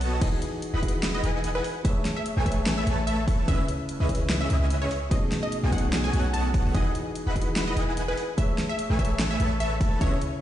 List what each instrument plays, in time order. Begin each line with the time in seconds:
Already playing: 808-style bass B1, supersaw synth B3 F#4 A4 C#5 D#5 A5, digital synth lead A5
0.01 open hi-hat
0.20 808-style bass E1, grand piano E3 D#4 F#4 G#4, supersaw synth E4 B4 G#5, synth pluck D#5, digital synth lead G#5, kick, closed hi-hat, crash
0.42 closed hi-hat
0.62 closed hi-hat
0.73 808-style bass E1, supersaw synth E4 B4 D#5 F#5 B5, digital synth lead B5
0.82 grand piano E3 D#4 F#4 G#4, kick, closed hi-hat
0.88 closed hi-hat
1.03 snare, closed hi-hat
1.14 synth pluck D#5
1.23 808-style bass E1, supersaw synth E4 B4 D#5 F#5 G#5, digital synth lead G#5, closed hi-hat
1.44 closed hi-hat
1.55 synth pluck B4
1.64 open hi-hat
1.83 grand piano A3 G#4 B4, synth pluck E5, kick, closed hi-hat
1.87 grand piano C#5
2.05 snare, closed hi-hat
2.17 synth pluck E5
2.26 closed hi-hat
2.37 808-style bass A1, supersaw synth A3 A4 B4 C#5 G#5, digital synth lead G#5
2.45 grand piano A3 G#4 B4 C#5, synth pluck E5, kick, closed hi-hat
2.52 closed hi-hat
2.66 snare, closed hi-hat
2.78 synth pluck E5
2.87 808-style bass A1, supersaw synth A3 A4 B4 C#5 A5, digital synth lead A5, closed hi-hat
3.07 synth pluck E5, closed hi-hat
3.28 kick, open hi-hat
3.46 808-style bass C#2, grand piano C#3 C#4 E4 B4, supersaw synth C#4 G#4 B4 D#5 E5, digital synth lead E5, synth pluck E5, kick, closed hi-hat
3.68 closed hi-hat
3.89 closed hi-hat
4.00 808-style bass C#2, supersaw synth C#4 G#4 B4 D#5 E5, digital synth lead E5
4.08 grand piano C#3 C#4 E4 B4, kick, closed hi-hat
4.15 closed hi-hat
4.30 snare, closed hi-hat
4.41 synth pluck E5
4.50 808-style bass C#2, supersaw synth C#4 G#4 B4 D#5 E5, digital synth lead E5, closed hi-hat
4.70 closed hi-hat
4.82 synth pluck C#5
4.91 open hi-hat
5.09 grand piano B2 A3 C#4 D#4, synth pluck D#5, kick, closed hi-hat
5.13 grand piano G#4
5.32 snare, closed hi-hat
5.43 synth pluck D#5
5.52 closed hi-hat
5.63 808-style bass B1, supersaw synth B3 F#4 A4 C#5 D#5 G#5, digital synth lead G#5
5.72 grand piano B2 A3 C#4 D#4 G#4, synth pluck F#5, kick, closed hi-hat
5.78 closed hi-hat
5.93 snare, closed hi-hat
6.04 synth pluck G#5
6.13 808-style bass B1, supersaw synth B3 F#4 A4 C#5 D#5 F#5, digital synth lead F#5, closed hi-hat
6.34 synth pluck A5, closed hi-hat
6.54 kick, open hi-hat
6.65 808-style bass B1, supersaw synth B3 F#4 A4 C#5 D#5 F#5, digital synth lead F#5
6.73 808-style bass E1, grand piano E3 D#4 F#4 G#4, supersaw synth E4 B4 D#5 F#5 G#5, synth pluck D#5, digital synth lead G#5, kick, closed hi-hat
6.95 closed hi-hat
7.15 closed hi-hat
7.27 808-style bass E1, supersaw synth E4 B4 D#5 F#5 B5, digital synth lead B5
7.35 grand piano E3 D#4 F#4 G#4, kick, closed hi-hat
7.42 closed hi-hat
7.56 snare, closed hi-hat
7.68 synth pluck D#5
7.77 808-style bass E1, supersaw synth E4 B4 D#5 F#5 G#5, digital synth lead G#5, closed hi-hat
7.97 closed hi-hat
8.08 synth pluck B4
8.17 open hi-hat
8.36 grand piano A3 G#4 B4, synth pluck E5, kick, closed hi-hat
8.40 grand piano C#5
8.58 snare, closed hi-hat
8.69 synth pluck E5
8.79 closed hi-hat
8.90 808-style bass A1, supersaw synth A3 A4 B4 C#5 G#5, digital synth lead G#5
8.98 grand piano A3 G#4 B4 C#5, synth pluck E5, kick, closed hi-hat
9.05 closed hi-hat
9.20 snare, closed hi-hat
9.31 synth pluck E5
9.40 808-style bass A1, supersaw synth A3 A4 B4 C#5 A5, digital synth lead A5, closed hi-hat
9.60 synth pluck E5, closed hi-hat
9.81 kick, open hi-hat
9.99 808-style bass C#2, grand piano C#3 C#4 E4 B4, supersaw synth C#4 G#4 B4 D#5 E5, synth pluck C#5, digital synth lead E5, kick, closed hi-hat
10.22 closed hi-hat